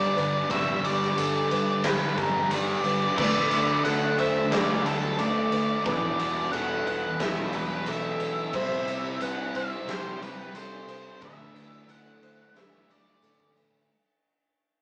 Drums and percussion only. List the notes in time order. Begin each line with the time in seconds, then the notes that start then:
0.18 ride
0.51 kick, ride
0.84 ride
1.02 snare
1.18 ride, tambourine
1.51 ride
1.84 snare, ride
2.18 kick, ride
2.51 ride, tambourine
2.84 ride
3.18 kick, crash
3.51 ride
3.85 ride
4.18 ride
4.52 snare, ride
4.86 ride
5.19 ride
5.52 ride
5.86 kick, ride
6.19 ride
6.53 ride
6.87 ride
7.20 snare, ride
7.53 ride
7.86 ride
8.20 ride
8.53 kick, tambourine, crash
8.88 ride, tambourine
9.20 ride, tambourine
9.55 ride, tambourine
9.71 tambourine
9.88 snare, ride, tambourine
10.22 ride, tambourine
10.55 ride, tambourine
10.88 ride, tambourine
11.06 tambourine
11.21 kick, ride
11.56 ride, tambourine
11.73 tambourine
11.89 ride, tambourine
12.06 tambourine
12.23 ride, tambourine
12.40 tambourine
12.55 snare, ride, tambourine
12.73 tambourine
12.89 ride, tambourine
13.06 tambourine
13.22 ride, tambourine
13.40 kick
13.56 ride, tambourine
13.72 tambourine